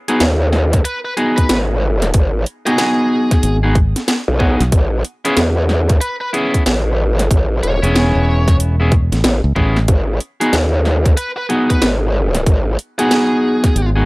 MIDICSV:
0, 0, Header, 1, 6, 480
1, 0, Start_track
1, 0, Tempo, 645161
1, 1596, Time_signature, 4, 2, 24, 8
1, 10455, End_track
2, 0, Start_track
2, 0, Title_t, "Lead electric guitar"
2, 0, Program_c, 0, 29
2, 632, Note_on_c, 0, 71, 89
2, 731, Note_off_c, 0, 71, 0
2, 781, Note_on_c, 0, 71, 78
2, 841, Note_off_c, 0, 71, 0
2, 1017, Note_on_c, 0, 71, 92
2, 1165, Note_off_c, 0, 71, 0
2, 1979, Note_on_c, 0, 68, 92
2, 2642, Note_off_c, 0, 68, 0
2, 4471, Note_on_c, 0, 71, 89
2, 4571, Note_off_c, 0, 71, 0
2, 4619, Note_on_c, 0, 71, 75
2, 4680, Note_off_c, 0, 71, 0
2, 5677, Note_on_c, 0, 73, 92
2, 6361, Note_off_c, 0, 73, 0
2, 8313, Note_on_c, 0, 71, 90
2, 8412, Note_off_c, 0, 71, 0
2, 8462, Note_on_c, 0, 71, 79
2, 8521, Note_off_c, 0, 71, 0
2, 8706, Note_on_c, 0, 71, 95
2, 8850, Note_off_c, 0, 71, 0
2, 9666, Note_on_c, 0, 68, 93
2, 10326, Note_off_c, 0, 68, 0
2, 10455, End_track
3, 0, Start_track
3, 0, Title_t, "Clean electric guitar"
3, 0, Program_c, 1, 27
3, 62, Note_on_c, 1, 68, 109
3, 67, Note_on_c, 1, 66, 77
3, 69, Note_on_c, 1, 63, 82
3, 71, Note_on_c, 1, 59, 78
3, 168, Note_off_c, 1, 59, 0
3, 168, Note_off_c, 1, 68, 0
3, 169, Note_off_c, 1, 63, 0
3, 169, Note_off_c, 1, 66, 0
3, 869, Note_on_c, 1, 68, 101
3, 873, Note_on_c, 1, 66, 75
3, 877, Note_on_c, 1, 63, 72
3, 880, Note_on_c, 1, 59, 72
3, 1092, Note_off_c, 1, 59, 0
3, 1092, Note_off_c, 1, 66, 0
3, 1092, Note_off_c, 1, 68, 0
3, 1093, Note_off_c, 1, 63, 0
3, 1980, Note_on_c, 1, 68, 99
3, 1984, Note_on_c, 1, 66, 83
3, 1987, Note_on_c, 1, 63, 78
3, 1990, Note_on_c, 1, 59, 89
3, 2669, Note_off_c, 1, 59, 0
3, 2669, Note_off_c, 1, 63, 0
3, 2669, Note_off_c, 1, 66, 0
3, 2669, Note_off_c, 1, 68, 0
3, 2701, Note_on_c, 1, 68, 88
3, 2707, Note_on_c, 1, 66, 65
3, 2709, Note_on_c, 1, 63, 66
3, 2714, Note_on_c, 1, 59, 68
3, 2808, Note_off_c, 1, 59, 0
3, 2808, Note_off_c, 1, 63, 0
3, 2808, Note_off_c, 1, 68, 0
3, 2809, Note_off_c, 1, 66, 0
3, 3268, Note_on_c, 1, 68, 115
3, 3271, Note_on_c, 1, 66, 84
3, 3276, Note_on_c, 1, 63, 84
3, 3280, Note_on_c, 1, 59, 89
3, 3433, Note_off_c, 1, 66, 0
3, 3434, Note_off_c, 1, 59, 0
3, 3434, Note_off_c, 1, 63, 0
3, 3434, Note_off_c, 1, 68, 0
3, 3903, Note_on_c, 1, 64, 84
3, 3905, Note_on_c, 1, 59, 93
3, 3909, Note_on_c, 1, 68, 99
3, 3910, Note_on_c, 1, 61, 80
3, 4008, Note_off_c, 1, 61, 0
3, 4009, Note_off_c, 1, 59, 0
3, 4009, Note_off_c, 1, 64, 0
3, 4009, Note_off_c, 1, 68, 0
3, 4709, Note_on_c, 1, 64, 84
3, 4712, Note_on_c, 1, 59, 90
3, 4717, Note_on_c, 1, 68, 92
3, 4720, Note_on_c, 1, 61, 71
3, 4932, Note_off_c, 1, 59, 0
3, 4932, Note_off_c, 1, 61, 0
3, 4932, Note_off_c, 1, 64, 0
3, 4932, Note_off_c, 1, 68, 0
3, 5821, Note_on_c, 1, 64, 78
3, 5828, Note_on_c, 1, 59, 86
3, 5830, Note_on_c, 1, 68, 95
3, 5836, Note_on_c, 1, 61, 80
3, 6510, Note_off_c, 1, 64, 0
3, 6510, Note_off_c, 1, 68, 0
3, 6511, Note_off_c, 1, 59, 0
3, 6511, Note_off_c, 1, 61, 0
3, 6545, Note_on_c, 1, 64, 65
3, 6549, Note_on_c, 1, 59, 71
3, 6552, Note_on_c, 1, 68, 78
3, 6557, Note_on_c, 1, 61, 57
3, 6649, Note_off_c, 1, 68, 0
3, 6650, Note_off_c, 1, 59, 0
3, 6650, Note_off_c, 1, 61, 0
3, 6650, Note_off_c, 1, 64, 0
3, 7109, Note_on_c, 1, 64, 91
3, 7113, Note_on_c, 1, 59, 97
3, 7115, Note_on_c, 1, 68, 94
3, 7120, Note_on_c, 1, 61, 79
3, 7273, Note_off_c, 1, 68, 0
3, 7274, Note_off_c, 1, 59, 0
3, 7274, Note_off_c, 1, 61, 0
3, 7274, Note_off_c, 1, 64, 0
3, 7740, Note_on_c, 1, 68, 103
3, 7742, Note_on_c, 1, 66, 82
3, 7746, Note_on_c, 1, 63, 80
3, 7750, Note_on_c, 1, 59, 76
3, 7847, Note_off_c, 1, 59, 0
3, 7847, Note_off_c, 1, 63, 0
3, 7847, Note_off_c, 1, 66, 0
3, 7847, Note_off_c, 1, 68, 0
3, 8549, Note_on_c, 1, 68, 96
3, 8552, Note_on_c, 1, 66, 74
3, 8555, Note_on_c, 1, 63, 73
3, 8561, Note_on_c, 1, 59, 80
3, 8771, Note_off_c, 1, 63, 0
3, 8771, Note_off_c, 1, 68, 0
3, 8772, Note_off_c, 1, 59, 0
3, 8772, Note_off_c, 1, 66, 0
3, 9664, Note_on_c, 1, 68, 102
3, 9668, Note_on_c, 1, 66, 79
3, 9673, Note_on_c, 1, 63, 75
3, 9675, Note_on_c, 1, 59, 87
3, 10351, Note_off_c, 1, 59, 0
3, 10351, Note_off_c, 1, 66, 0
3, 10351, Note_off_c, 1, 68, 0
3, 10352, Note_off_c, 1, 63, 0
3, 10382, Note_on_c, 1, 68, 82
3, 10389, Note_on_c, 1, 66, 70
3, 10391, Note_on_c, 1, 63, 61
3, 10394, Note_on_c, 1, 59, 65
3, 10455, Note_off_c, 1, 59, 0
3, 10455, Note_off_c, 1, 63, 0
3, 10455, Note_off_c, 1, 66, 0
3, 10455, Note_off_c, 1, 68, 0
3, 10455, End_track
4, 0, Start_track
4, 0, Title_t, "Wobble bass"
4, 0, Program_c, 2, 39
4, 150, Note_on_c, 2, 39, 100
4, 619, Note_off_c, 2, 39, 0
4, 1113, Note_on_c, 2, 32, 94
4, 1580, Note_off_c, 2, 32, 0
4, 1593, Note_on_c, 2, 32, 94
4, 1820, Note_off_c, 2, 32, 0
4, 3184, Note_on_c, 2, 35, 103
4, 3402, Note_off_c, 2, 35, 0
4, 3514, Note_on_c, 2, 33, 92
4, 3741, Note_off_c, 2, 33, 0
4, 3993, Note_on_c, 2, 40, 102
4, 4460, Note_off_c, 2, 40, 0
4, 4955, Note_on_c, 2, 33, 96
4, 5282, Note_off_c, 2, 33, 0
4, 5282, Note_on_c, 2, 32, 96
4, 5421, Note_off_c, 2, 32, 0
4, 5436, Note_on_c, 2, 33, 90
4, 5662, Note_off_c, 2, 33, 0
4, 5677, Note_on_c, 2, 28, 99
4, 5804, Note_off_c, 2, 28, 0
4, 6874, Note_on_c, 2, 33, 99
4, 7003, Note_off_c, 2, 33, 0
4, 7355, Note_on_c, 2, 32, 94
4, 7581, Note_off_c, 2, 32, 0
4, 7832, Note_on_c, 2, 39, 97
4, 8300, Note_off_c, 2, 39, 0
4, 8794, Note_on_c, 2, 32, 97
4, 9261, Note_off_c, 2, 32, 0
4, 9275, Note_on_c, 2, 32, 93
4, 9501, Note_off_c, 2, 32, 0
4, 10455, End_track
5, 0, Start_track
5, 0, Title_t, "Fingered electric bass"
5, 0, Program_c, 3, 33
5, 2555, Note_on_c, 3, 32, 101
5, 2923, Note_off_c, 3, 32, 0
5, 3426, Note_on_c, 3, 35, 100
5, 3501, Note_off_c, 3, 35, 0
5, 5826, Note_on_c, 3, 28, 103
5, 6043, Note_off_c, 3, 28, 0
5, 6066, Note_on_c, 3, 28, 96
5, 6763, Note_off_c, 3, 28, 0
5, 6785, Note_on_c, 3, 33, 103
5, 6860, Note_off_c, 3, 33, 0
5, 7024, Note_on_c, 3, 37, 97
5, 7100, Note_off_c, 3, 37, 0
5, 7112, Note_on_c, 3, 33, 101
5, 7340, Note_off_c, 3, 33, 0
5, 10236, Note_on_c, 3, 32, 102
5, 10455, Note_off_c, 3, 32, 0
5, 10455, End_track
6, 0, Start_track
6, 0, Title_t, "Drums"
6, 62, Note_on_c, 9, 42, 58
6, 136, Note_off_c, 9, 42, 0
6, 151, Note_on_c, 9, 38, 119
6, 151, Note_on_c, 9, 42, 68
6, 226, Note_off_c, 9, 38, 0
6, 226, Note_off_c, 9, 42, 0
6, 392, Note_on_c, 9, 40, 44
6, 466, Note_off_c, 9, 40, 0
6, 544, Note_on_c, 9, 42, 55
6, 547, Note_on_c, 9, 36, 109
6, 618, Note_off_c, 9, 42, 0
6, 621, Note_off_c, 9, 36, 0
6, 633, Note_on_c, 9, 42, 72
6, 707, Note_off_c, 9, 42, 0
6, 872, Note_on_c, 9, 42, 40
6, 947, Note_off_c, 9, 42, 0
6, 1024, Note_on_c, 9, 42, 58
6, 1026, Note_on_c, 9, 36, 63
6, 1099, Note_off_c, 9, 42, 0
6, 1101, Note_off_c, 9, 36, 0
6, 1111, Note_on_c, 9, 38, 127
6, 1111, Note_on_c, 9, 42, 75
6, 1185, Note_off_c, 9, 38, 0
6, 1185, Note_off_c, 9, 42, 0
6, 1503, Note_on_c, 9, 40, 39
6, 1503, Note_on_c, 9, 42, 55
6, 1578, Note_off_c, 9, 40, 0
6, 1578, Note_off_c, 9, 42, 0
6, 1590, Note_on_c, 9, 42, 74
6, 1593, Note_on_c, 9, 36, 127
6, 1664, Note_off_c, 9, 42, 0
6, 1668, Note_off_c, 9, 36, 0
6, 1833, Note_on_c, 9, 42, 39
6, 1907, Note_off_c, 9, 42, 0
6, 1984, Note_on_c, 9, 42, 59
6, 2058, Note_off_c, 9, 42, 0
6, 2070, Note_on_c, 9, 38, 121
6, 2070, Note_on_c, 9, 42, 72
6, 2145, Note_off_c, 9, 38, 0
6, 2145, Note_off_c, 9, 42, 0
6, 2465, Note_on_c, 9, 36, 111
6, 2465, Note_on_c, 9, 40, 39
6, 2465, Note_on_c, 9, 42, 57
6, 2539, Note_off_c, 9, 36, 0
6, 2539, Note_off_c, 9, 40, 0
6, 2539, Note_off_c, 9, 42, 0
6, 2552, Note_on_c, 9, 42, 74
6, 2627, Note_off_c, 9, 42, 0
6, 2793, Note_on_c, 9, 36, 112
6, 2793, Note_on_c, 9, 42, 42
6, 2867, Note_off_c, 9, 36, 0
6, 2868, Note_off_c, 9, 42, 0
6, 2947, Note_on_c, 9, 38, 41
6, 2947, Note_on_c, 9, 42, 55
6, 3021, Note_off_c, 9, 38, 0
6, 3021, Note_off_c, 9, 42, 0
6, 3035, Note_on_c, 9, 38, 127
6, 3035, Note_on_c, 9, 42, 77
6, 3109, Note_off_c, 9, 38, 0
6, 3109, Note_off_c, 9, 42, 0
6, 3274, Note_on_c, 9, 36, 67
6, 3348, Note_off_c, 9, 36, 0
6, 3426, Note_on_c, 9, 40, 36
6, 3426, Note_on_c, 9, 42, 56
6, 3501, Note_off_c, 9, 40, 0
6, 3501, Note_off_c, 9, 42, 0
6, 3513, Note_on_c, 9, 42, 69
6, 3514, Note_on_c, 9, 36, 127
6, 3588, Note_off_c, 9, 36, 0
6, 3588, Note_off_c, 9, 42, 0
6, 3754, Note_on_c, 9, 42, 39
6, 3828, Note_off_c, 9, 42, 0
6, 3906, Note_on_c, 9, 42, 56
6, 3981, Note_off_c, 9, 42, 0
6, 3993, Note_on_c, 9, 38, 127
6, 3993, Note_on_c, 9, 42, 68
6, 4067, Note_off_c, 9, 38, 0
6, 4067, Note_off_c, 9, 42, 0
6, 4234, Note_on_c, 9, 40, 40
6, 4308, Note_off_c, 9, 40, 0
6, 4385, Note_on_c, 9, 42, 54
6, 4387, Note_on_c, 9, 36, 112
6, 4460, Note_off_c, 9, 42, 0
6, 4461, Note_off_c, 9, 36, 0
6, 4475, Note_on_c, 9, 42, 67
6, 4549, Note_off_c, 9, 42, 0
6, 4716, Note_on_c, 9, 42, 40
6, 4791, Note_off_c, 9, 42, 0
6, 4867, Note_on_c, 9, 36, 68
6, 4869, Note_on_c, 9, 42, 56
6, 4942, Note_off_c, 9, 36, 0
6, 4943, Note_off_c, 9, 42, 0
6, 4956, Note_on_c, 9, 38, 127
6, 4956, Note_on_c, 9, 42, 75
6, 5030, Note_off_c, 9, 38, 0
6, 5030, Note_off_c, 9, 42, 0
6, 5352, Note_on_c, 9, 40, 36
6, 5352, Note_on_c, 9, 42, 55
6, 5427, Note_off_c, 9, 40, 0
6, 5427, Note_off_c, 9, 42, 0
6, 5436, Note_on_c, 9, 36, 127
6, 5440, Note_on_c, 9, 42, 67
6, 5510, Note_off_c, 9, 36, 0
6, 5515, Note_off_c, 9, 42, 0
6, 5679, Note_on_c, 9, 42, 38
6, 5754, Note_off_c, 9, 42, 0
6, 5831, Note_on_c, 9, 42, 52
6, 5905, Note_off_c, 9, 42, 0
6, 5919, Note_on_c, 9, 38, 125
6, 5919, Note_on_c, 9, 42, 66
6, 5993, Note_off_c, 9, 38, 0
6, 5993, Note_off_c, 9, 42, 0
6, 6307, Note_on_c, 9, 36, 110
6, 6310, Note_on_c, 9, 40, 35
6, 6310, Note_on_c, 9, 42, 53
6, 6381, Note_off_c, 9, 36, 0
6, 6385, Note_off_c, 9, 40, 0
6, 6385, Note_off_c, 9, 42, 0
6, 6398, Note_on_c, 9, 42, 66
6, 6472, Note_off_c, 9, 42, 0
6, 6635, Note_on_c, 9, 36, 113
6, 6636, Note_on_c, 9, 42, 36
6, 6709, Note_off_c, 9, 36, 0
6, 6710, Note_off_c, 9, 42, 0
6, 6789, Note_on_c, 9, 38, 40
6, 6789, Note_on_c, 9, 42, 54
6, 6863, Note_off_c, 9, 38, 0
6, 6863, Note_off_c, 9, 42, 0
6, 6874, Note_on_c, 9, 38, 127
6, 6874, Note_on_c, 9, 42, 73
6, 6949, Note_off_c, 9, 38, 0
6, 6949, Note_off_c, 9, 42, 0
6, 7114, Note_on_c, 9, 36, 68
6, 7189, Note_off_c, 9, 36, 0
6, 7265, Note_on_c, 9, 40, 34
6, 7339, Note_off_c, 9, 40, 0
6, 7352, Note_on_c, 9, 42, 65
6, 7353, Note_on_c, 9, 36, 120
6, 7427, Note_off_c, 9, 42, 0
6, 7428, Note_off_c, 9, 36, 0
6, 7592, Note_on_c, 9, 42, 37
6, 7667, Note_off_c, 9, 42, 0
6, 7746, Note_on_c, 9, 42, 53
6, 7821, Note_off_c, 9, 42, 0
6, 7834, Note_on_c, 9, 38, 120
6, 7834, Note_on_c, 9, 42, 63
6, 7909, Note_off_c, 9, 38, 0
6, 7909, Note_off_c, 9, 42, 0
6, 8075, Note_on_c, 9, 40, 39
6, 8149, Note_off_c, 9, 40, 0
6, 8225, Note_on_c, 9, 36, 107
6, 8227, Note_on_c, 9, 42, 53
6, 8300, Note_off_c, 9, 36, 0
6, 8301, Note_off_c, 9, 42, 0
6, 8313, Note_on_c, 9, 42, 65
6, 8387, Note_off_c, 9, 42, 0
6, 8554, Note_on_c, 9, 42, 38
6, 8628, Note_off_c, 9, 42, 0
6, 8705, Note_on_c, 9, 36, 65
6, 8706, Note_on_c, 9, 42, 52
6, 8780, Note_off_c, 9, 36, 0
6, 8781, Note_off_c, 9, 42, 0
6, 8792, Note_on_c, 9, 38, 127
6, 8792, Note_on_c, 9, 42, 67
6, 8866, Note_off_c, 9, 38, 0
6, 8866, Note_off_c, 9, 42, 0
6, 9185, Note_on_c, 9, 40, 36
6, 9185, Note_on_c, 9, 42, 51
6, 9260, Note_off_c, 9, 40, 0
6, 9260, Note_off_c, 9, 42, 0
6, 9274, Note_on_c, 9, 36, 116
6, 9274, Note_on_c, 9, 42, 64
6, 9348, Note_off_c, 9, 36, 0
6, 9349, Note_off_c, 9, 42, 0
6, 9514, Note_on_c, 9, 42, 36
6, 9589, Note_off_c, 9, 42, 0
6, 9664, Note_on_c, 9, 42, 52
6, 9738, Note_off_c, 9, 42, 0
6, 9754, Note_on_c, 9, 38, 112
6, 9754, Note_on_c, 9, 42, 66
6, 9828, Note_off_c, 9, 38, 0
6, 9828, Note_off_c, 9, 42, 0
6, 10146, Note_on_c, 9, 36, 100
6, 10147, Note_on_c, 9, 40, 36
6, 10147, Note_on_c, 9, 42, 52
6, 10221, Note_off_c, 9, 36, 0
6, 10221, Note_off_c, 9, 40, 0
6, 10221, Note_off_c, 9, 42, 0
6, 10238, Note_on_c, 9, 42, 65
6, 10312, Note_off_c, 9, 42, 0
6, 10455, End_track
0, 0, End_of_file